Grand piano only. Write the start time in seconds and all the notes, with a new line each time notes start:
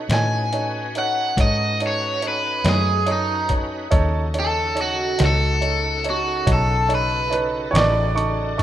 0.10 D#4 A4 C#5
0.53 D#4 A4 C#5
0.95 D#4 A4 C#5
1.38 D#4 A4 C#5
1.80 D#4 A4 C#5
2.22 D#4 A4 C#5
2.64 A3 D#4 C#5
3.06 D#4 A4 C#5
3.49 D#4 A4 C#5
3.91 D#4 A4 C#5
4.34 D#4 A4 C#5
4.75 D#4 A4 C#5
5.18 D#4 A4 C#5
5.61 D#4 A4 C#5
6.04 D#4 A4 C#5
6.46 D#4 A4 C#5
6.89 D#4 A4 C#5
7.30 D#4 A4 C#5
7.73 D#4 A4 C#6
8.15 D#4 A4 C#6
8.58 D#4 A4 C#6